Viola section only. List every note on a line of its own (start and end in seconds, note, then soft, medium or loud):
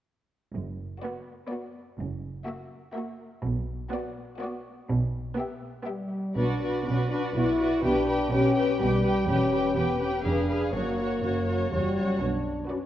1.02 1.38 B3 soft
1.51 1.86 B3 soft
2.47 2.83 A#3 soft
2.96 3.32 A#3 soft
3.93 4.29 B3 medium
4.42 4.77 B3 medium
5.37 5.74 B3 soft
5.88 6.24 B3 soft
6.37 6.60 F#4 soft
6.61 6.85 F#4 soft
6.86 7.10 F#4 soft
7.11 7.34 F#4 soft
7.35 7.58 F#4 soft
7.59 7.83 F#4 soft
7.83 8.06 G4 soft
8.08 8.30 G4 soft
8.32 8.54 G4 soft
8.56 8.79 G4 soft
8.80 9.02 G4 soft
9.03 9.27 G4 soft
9.28 9.50 G4 medium
9.52 9.74 G4 soft
9.76 9.99 G4 soft
10.00 10.24 G4 soft
10.24 10.47 G#4 soft
10.49 10.73 G#4 soft
10.74 10.97 F#4 soft
10.98 11.21 F#4 soft
11.23 11.45 F#4 soft
11.46 11.70 F#4 soft
11.72 11.95 F#4 soft
11.97 12.20 F#4 soft
12.69 12.86 F#4 soft